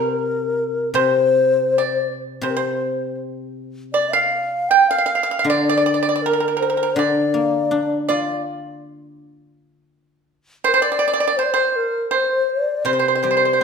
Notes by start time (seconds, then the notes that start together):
Already playing: C3 A#4
0.94 C3 C5
1.78 D5
2.41 C3 C5
2.50 A#4
2.57 C5
3.93 D5
4.13 F5
4.69 G5
4.87 F5
4.98 F5
5.06 F5
5.15 F5
5.23 F5
5.31 F5
5.39 F5
5.44 D3 D5
5.50 D5
5.64 D5
5.69 D5
5.77 D5
5.86 D5
5.94 D5
6.03 D5
6.09 D5
6.16 D5
6.22 A#4
6.26 A#4
6.33 A#4
6.40 A#4
6.48 A#4
6.57 A#4 C5
6.62 A#4
6.70 A#4
6.77 A#4
6.83 A#4
6.95 D3 D5
7.34 A#3
7.71 D4
8.09 F4 D5
10.64 A#4 C5
10.73 C5
10.82 D5
10.92 D5
10.99 D5
11.08 D5
11.13 D5
11.20 D5
11.27 D5
11.37 C5
11.44 D5
11.51 C5
11.76 A#4
12.11 C5
12.50 D5
12.85 C3 C5
12.93 C5
12.99 C5
13.08 C5
13.15 C5
13.23 G3 C5
13.31 C5
13.37 C5
13.45 C5
13.53 C5